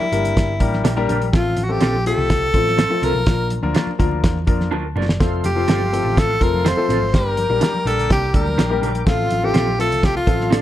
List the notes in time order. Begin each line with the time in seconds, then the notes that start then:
Already playing: E4
0.02 high conga
0.12 G1 G3 A#3 D4 G4 A#4, closed hi-hat
0.25 closed hi-hat, low conga
0.37 G1, kick, snare, closed hi-hat, low conga
0.60 A1 G3 A#3 D4 G4 A#4, kick, closed hi-hat, muted conga
0.73 snare, high conga
0.84 A#1 D4 G4 A#4, snare, closed hi-hat, muted conga, high conga
0.97 G3 A#3 D4 G4 A#4
1.09 A#1 D4 G4 A#4, closed hi-hat, high conga, low conga
1.22 closed hi-hat
1.32 A1 F3 A3 C4 F4 A4, kick, snare, closed hi-hat
1.57 A1, closed hi-hat, high conga
1.64 F#4
1.69 F3 A3 C4 F4 G4 A4, high conga
1.81 A#1 C4 F4 A4, snare, closed hi-hat
1.95 high conga
2.06 F3 A3 C4 F4 G4 A4, closed hi-hat, muted conga
2.18 C2, low conga
2.30 kick, snare, closed hi-hat, low conga
2.54 A1 F3 A3 C4 F4 A4, kick, closed hi-hat, muted conga
2.67 snare, high conga
2.78 C4 F4 A4, snare, closed hi-hat, muted conga, high conga
2.90 F3 A3 C4 F4 A4
3.02 C2 C4 F4 A4 A#4, closed hi-hat, muted conga, high conga, low conga
3.15 B1
3.26 A#1 F3 A#3 D4 F4 A#4, kick, snare, closed hi-hat
3.50 closed hi-hat, muted conga, high conga
3.63 D2 F3 A#3 D4 F4 A#4, high conga
3.75 D4 F4 A#4, snare, closed hi-hat, muted conga
3.87 muted picked electric bass stroke, high conga
3.99 D2 F3 A#3 D4 F4 A#4, kick, closed hi-hat
4.11 low conga
4.24 E2, kick, snare, closed hi-hat, muted conga, low conga
4.47 F2 F3 A#3 D4 F4 A#4, kick, closed hi-hat, muted conga
4.61 snare, high conga
4.71 D2 D4 F4 A#4 A5, muted conga, high conga
4.96 F#1 D4 F4 A#4 D5, muted conga, high conga, low conga
5.09 snare
5.20 F1 F3 A3 C4 F4 A4 F5 C6, kick, snare, closed hi-hat
5.44 F1 G4, closed hi-hat, high conga
5.56 F3 A3 C4 F4 A4, high conga
5.68 G1 C4 F4 A4, snare, closed hi-hat
5.82 high conga
5.92 F3 A3 C4 F4 A4, closed hi-hat
6.05 A1, low conga
6.17 A4, kick, snare, closed hi-hat, muted conga, low conga
6.41 F1 F3 A3 C4 F4 A4 A#4, kick, closed hi-hat
6.54 high conga
6.65 C4 F4 A4 C5, snare, closed hi-hat, muted conga, high conga
6.77 F3 A3 C4 F4 A4
6.89 A1 C4 F4 A4, closed hi-hat, muted conga, high conga, low conga
7.01 G#1
7.13 G1 G3 A#3 D4 G4 A#4 G5 D6, kick, snare, closed hi-hat, muted conga
7.37 closed hi-hat, muted conga, high conga
7.50 A#1 G3 A#3 D4 G4 A#4, high conga
7.61 D4 G4 A#4, snare, closed hi-hat, muted conga
7.74 muted picked electric bass stroke, high conga
7.85 A#1 G3 A#3 D4 G4 A4 A#4, closed hi-hat, muted conga
7.98 closed hi-hat, low conga
8.10 C2 G4, kick, snare, closed hi-hat, low conga
8.33 D2 G3 A#3 D4 G4 A#4, kick, closed hi-hat
8.47 high conga
8.58 A#1 D4 G4 A#4, snare, closed hi-hat, high conga
8.70 G3 A#3 D4 G4 A#4
8.82 A#1 D4 G4 A#4, closed hi-hat, high conga, low conga
8.95 closed hi-hat
9.06 A1 F3 A3 C4 F4 A4 F5 C6, kick, snare, closed hi-hat
9.31 A1, closed hi-hat, high conga
9.43 F3 A3 C4 F4 G4 A4, high conga
9.54 A#1 C4 F4 A4, snare, closed hi-hat, muted conga
9.67 high conga
9.79 F3 A3 C4 F4 A4, closed hi-hat, muted conga
9.91 C2, closed hi-hat, low conga
10.03 G4, kick, snare, closed hi-hat, muted conga, low conga
10.17 F4
10.27 A1 F3 A3 C4 F4 A4, kick, closed hi-hat
10.39 snare, high conga
10.50 C4 D4 F4 A4, snare, closed hi-hat, high conga